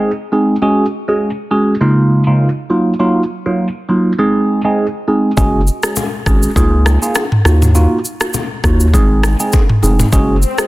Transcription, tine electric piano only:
Already playing: G#3 C4 D#4 G#4
0.32 G#3 C4 D#4 G#4
0.62 G#3 C#4 F#4 G#4
1.08 G#3 C#4 F#4 G#4
1.51 G#3 C#4 F#4 G#4
1.81 C#3 G#3 A#3 D#4 F4
2.27 C#3 G#3 A#3 D#4 F4
2.70 F#3 A#3 D#4 F4
2.99 F#3 A#3 D#4 F4
3.46 F#3 A#3 D#4 F4
3.89 F#3 A#3 D#4 F4
4.18 G#3 C4 D#4 G#4
4.64 G#3 C4 D#4 G#4
5.07 G#3 C4 D#4 G#4
5.37 G#3 C#4 F#4 G#4
5.83 G#3 C#4 F#4 G#4
6.26 G#3 C#4 F#4 G#4
6.56 A#3 D#4 F4 G#4
7.02 A#3 D#4 F4 G#4
7.45 A#3 D#4 F4 F#4
7.75 A#3 D#4 F4 F#4
8.21 A#3 D#4 F4 F#4
8.64 A#3 D#4 F4 F#4
8.93 G#3 C4 D#4 G#4
9.40 G#3 C4 D#4 G#4
9.83 G#3 C4 D#4 G#4
10.12 G#3 C#4 F#4 G#4
10.58 G#3 C#4 F#4 G#4

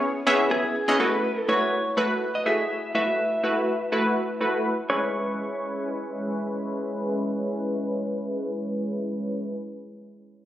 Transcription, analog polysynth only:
0.26 B3 C#4 E4 G#4 E5
0.88 B3 C#4 E4 G#4 D#5
0.99 A3 E4 F#4 B4
1.48 A3 E4 F#4 B4
1.97 A3 E4 F#4 B4
2.46 A3 E4 F#4 G#4
2.94 A3 E4 F#4 B4
3.43 A3 E4 F#4 B4
3.92 A3 E4 F#4 B4
4.41 A3 E4 F#4 B4
4.90 G#3 C#4 E4 B4

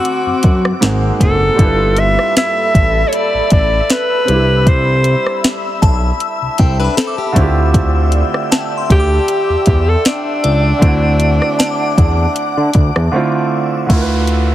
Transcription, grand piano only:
Already playing: D3 A3 C4 E4 F#4
0.81 G#2 G#3 A#3 C4
0.85 F#4
1.55 G3 D4 E4
1.61 F4 A4 B4
4.25 G3 C4
4.29 D4 E4
4.34 G4
7.32 D3 A3 C4
7.38 E4 F4 G4
10.79 D3 A3
10.83 C4 E4
10.88 F#4
13.12 D3 A3 C4 E4
13.16 F4
13.86 D3 A3
13.91 E4 F4
13.95 A#4
14.02 B4

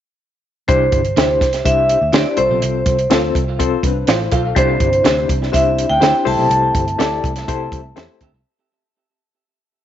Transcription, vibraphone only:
0.68 C5
1.66 E5
2.12 D5
2.38 C5
4.57 C5
5.53 E5
5.90 G5
6.27 A5

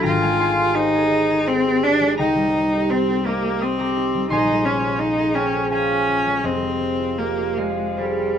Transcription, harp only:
0.03 G#1 G5 A#5
0.22 G#3 F5 G#5
0.39 D#4 G#5 C6
0.59 G4
0.76 C5
0.95 G#4
1.11 D#5
1.30 G#4
1.47 C5
1.65 G4
1.85 D#4
2.00 G#3
2.18 C2 G5 A#5
2.36 G3
2.54 D#4
2.72 G4
2.90 C5
3.08 G4
3.26 D#5 A#5 D6
3.44 G4
3.61 C5 C6 D#6
3.78 G4 A#5 D6
3.97 D#4
4.15 G3
4.30 A#1 G#5 C6
4.48 G#3
4.65 C#4
4.80 F4
4.99 C5
5.16 G#4
5.34 C#5 G5 A#5
5.53 G#4
5.71 C5 F5 G#5
5.90 F4
6.08 C#4
6.27 G#3
6.43 F1 F2 C5 D#5
6.62 G#3
6.80 C4
6.98 F4
7.17 G4
7.38 F4
7.57 C4 D5 F5
7.78 F4
7.97 G4 G#4 C5
8.18 F4

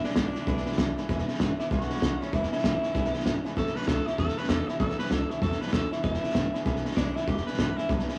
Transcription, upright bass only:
0.05 muted upright bass stroke
0.16 G#1
0.36 muted upright bass stroke
0.47 B1
0.67 muted upright bass stroke
0.78 B1
0.98 muted upright bass stroke
1.09 E1
1.40 G#1
1.60 muted upright bass stroke
1.71 B1
1.91 muted upright bass stroke
2.02 B1
2.21 muted upright bass stroke
2.33 E1
2.64 G#1
2.83 muted upright bass stroke
2.95 B1
3.14 muted upright bass stroke
3.26 G#1
3.45 muted upright bass stroke
3.57 A1
3.75 muted upright bass stroke
3.88 C#2
4.07 muted upright bass stroke
4.19 E2
4.49 E2
4.69 muted upright bass stroke
4.80 A1
5.11 C#2
5.31 muted upright bass stroke
5.42 E2
5.62 muted upright bass stroke
5.73 D#2
5.93 muted upright bass stroke
6.04 E1
6.24 muted upright bass stroke
6.35 G#1
6.66 B1
6.86 muted upright bass stroke
6.97 B1
7.16 muted upright bass stroke
7.28 E1
7.47 muted upright bass stroke
7.59 G#1
7.78 muted upright bass stroke
7.90 B1

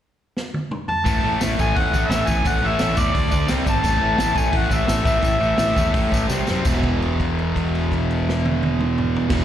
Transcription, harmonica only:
0.89 A5
1.60 G#5
1.77 F#5
2.07 E5
2.28 G#5
2.48 F#5
2.67 E5
3.00 D5
3.70 A5
4.37 G#5
4.56 F#5
4.74 E5

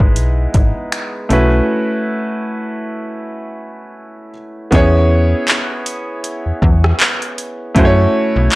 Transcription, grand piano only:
Already playing: G#3 B3 D#4 E4 B4
1.29 A3 C#4 E4 F#4 B4
4.71 B3 C#4 E4 G#4 C#5
7.75 A3 C#4 E4 F#4
7.79 C5
7.85 C#5

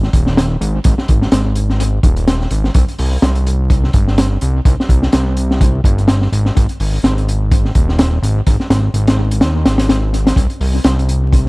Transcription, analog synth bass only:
0.13 D#1
0.61 G#1
0.85 G#1
1.09 G#1
1.32 G#1
2.03 D#1
2.51 G#1
2.75 C2
2.99 C2
3.23 C2
3.94 G1
4.42 C2
4.65 C2
4.89 C2
5.13 C2
5.84 G1
6.32 G#1
6.57 G#1
6.80 G#1
7.04 G#1
7.75 D#1
8.22 G#1
8.47 G#1
8.70 G#1
8.94 G#1
9.41 D#2
9.65 G#1
10.36 C2
10.60 C2
10.84 C2

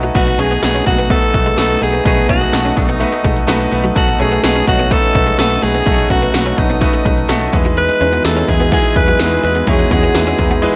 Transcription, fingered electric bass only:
0.15 B1
0.39 B1
0.63 B1
0.87 B1
1.34 B1
1.58 B1
1.82 B1
2.05 B1
2.29 B1
2.53 B1
2.77 B1
3.24 B1
3.48 B1
3.72 B1
3.96 B1
4.20 B1
4.44 B1
4.67 B1
5.15 B1
5.39 B1
5.63 B1
5.86 B1
6.10 B1
6.34 B1
6.58 B1
7.05 B1
7.29 B1
7.53 E2
8.01 E2
8.25 E2
8.48 E2
8.96 E2
9.20 E2
9.44 E2
9.67 E2
9.91 E2
10.15 E2
10.39 E2

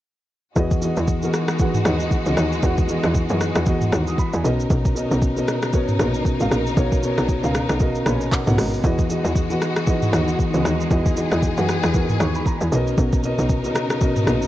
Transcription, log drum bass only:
0.56 E2
0.97 E2
1.85 D#2
2.26 C#2
2.37 D#2
2.63 E2
3.04 E2
3.30 F#2
3.56 E2
3.93 D#2
4.33 E2
4.44 B1
4.70 B1
5.11 B1
6.00 A#1
6.41 G#1
6.51 A#1
6.77 B1
7.18 B1
7.44 C#2
7.70 B1
8.06 A#1
8.47 B1
8.58 G#1
8.84 E2
9.24 E2
10.13 D#2
10.54 C#2
10.65 D#2
10.91 E2
11.32 E2
11.58 F#2
11.84 E2
12.20 D#2
12.61 E2
12.72 B1
12.98 B1
13.39 B1
14.27 A#1

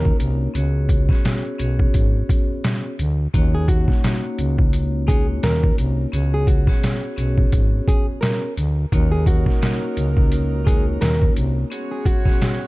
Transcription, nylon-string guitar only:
Already playing: A#4
3.54 G#4
3.68 F#4
5.08 G#4
5.44 A#4
6.34 G#4
6.47 F#4
7.88 G#4
8.21 A#4
9.12 G#4
9.27 F#4
10.67 G#4
11.01 A#4
11.91 G#4
12.06 F#4

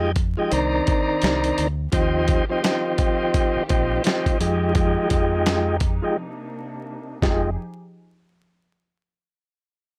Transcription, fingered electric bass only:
Already playing: F2
0.52 C2
1.23 C2
1.58 D2
1.93 D#2
3.56 muted fingered electric bass stroke
3.70 A#1
4.40 F2
5.11 F2
7.23 F1

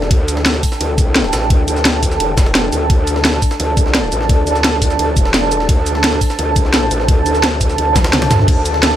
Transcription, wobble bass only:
0.11 D2
0.81 D2
0.98 C2
1.33 A1
1.50 D2
1.68 D2
2.20 E1
2.73 D2
2.90 D2
3.60 D2
3.77 C2
4.12 A1
4.29 D2
4.47 D2
4.99 D2
5.17 E1
5.69 D2
6.39 D2
6.56 C2
6.91 A1
7.08 D2
7.26 D2
7.78 D2
8.31 D2
8.48 D2

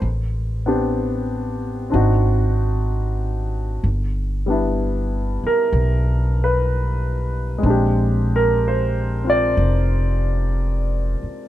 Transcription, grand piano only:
0.66 B3 C4 D4 G4
1.90 C4 D4 D#4
1.95 F#4
4.46 G3 B3 D4
4.51 E4
5.47 A#4
6.44 B4
7.58 G#3 C4
7.66 D4
7.70 G4
8.36 A#4
8.68 C5
9.24 C4 F4
9.30 D5

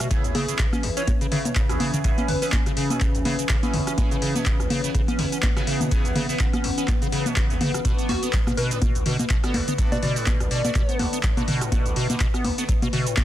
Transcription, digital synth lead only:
0.35 G#4
0.97 C#5
2.28 B4
2.42 B4
8.09 F#4
8.57 B4
9.92 D5
10.03 D5
10.51 D5

